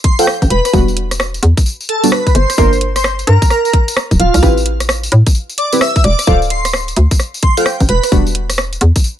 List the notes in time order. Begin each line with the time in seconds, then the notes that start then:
0.04 C6, kick, open hi-hat
0.19 F4 A4 C5 F5 G5, closed hi-hat, tambourine
0.27 cross-stick, tambourine
0.42 A1, kick, closed hi-hat, tambourine
0.50 E1 B4, open hi-hat
0.65 B4, cross-stick, open hi-hat, tambourine
0.73 E1 G3 B3 D4 F#4, kick, tambourine
0.88 tambourine
0.97 open hi-hat
1.11 cross-stick, closed hi-hat, tambourine
1.20 cross-stick, closed hi-hat, tambourine
1.34 closed hi-hat, tambourine
1.43 E2, open hi-hat
1.57 kick, closed hi-hat, tambourine
1.66 tambourine
1.81 tambourine
1.89 A4, open hi-hat
2.03 G3 B3 D4 F#4, closed hi-hat, tambourine
2.12 B4, cross-stick, tambourine
2.27 B4, kick, closed hi-hat, tambourine
2.35 G1 C5, cross-stick, open hi-hat
2.50 cross-stick, closed hi-hat, tambourine
2.58 G1 A#3 D4 F4 A#4, kick, tambourine
2.73 tambourine
2.81 open hi-hat
2.96 C5, cross-stick, closed hi-hat, tambourine
3.04 cross-stick, closed hi-hat
3.19 closed hi-hat, tambourine
3.27 G2 A#4, open hi-hat
3.42 kick, closed hi-hat, tambourine
3.50 A#4, cross-stick, tambourine
3.65 A#4, tambourine
3.73 kick, open hi-hat
3.88 closed hi-hat, tambourine
3.97 cross-stick, tambourine
4.11 D1, kick, closed hi-hat, tambourine
4.20 D1 F4, open hi-hat
4.34 C2, cross-stick, open hi-hat, tambourine
4.43 A1 C4 E4 G4 B4, kick, tambourine
4.57 tambourine
4.66 open hi-hat
4.80 cross-stick, closed hi-hat, tambourine
4.89 cross-stick, closed hi-hat, tambourine
5.03 closed hi-hat, tambourine
5.12 A2, open hi-hat
5.27 kick, closed hi-hat, tambourine
5.35 tambourine
5.50 tambourine
5.58 D5, open hi-hat
5.73 C4 E4 G4 B4, closed hi-hat, tambourine
5.81 E5, cross-stick, tambourine
5.96 E5, kick, closed hi-hat, tambourine
6.04 E1 D5, cross-stick, open hi-hat
6.19 cross-stick, closed hi-hat, tambourine
6.27 D1 F4 A4 C5 F5, kick, tambourine
6.42 tambourine
6.50 C6, open hi-hat
6.65 C6, cross-stick, closed hi-hat, tambourine
6.73 cross-stick, closed hi-hat, tambourine
6.88 closed hi-hat, tambourine
6.96 D2, open hi-hat
7.11 kick, closed hi-hat, tambourine
7.20 cross-stick, tambourine
7.34 tambourine
7.43 C6, kick, open hi-hat
7.57 F4 A4 C5 F5 G5, closed hi-hat, tambourine
7.66 cross-stick, tambourine
7.80 A1, kick, closed hi-hat, tambourine
7.89 E1 B4, open hi-hat
8.03 B4, cross-stick, open hi-hat, tambourine
8.12 E1 G3 B3 D4 F#4, kick, tambourine
8.27 tambourine
8.35 open hi-hat
8.50 cross-stick, closed hi-hat, tambourine
8.58 cross-stick, closed hi-hat
8.73 closed hi-hat, tambourine
8.81 E2, open hi-hat
8.96 kick, closed hi-hat, tambourine
9.04 tambourine